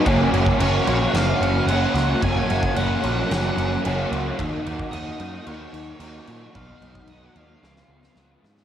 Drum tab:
CC |x-x-x-x-x-x-x-x-|x-x-x-x-x-x-x-x-|x-x-x-x-x-x-x-x-|x-x-x-x---------|
SD |--------o-----o-|--------o-------|----------------|--------oo-oo-oo|
BD |o--o------------|o--o------------|o--o------------|o--o------------|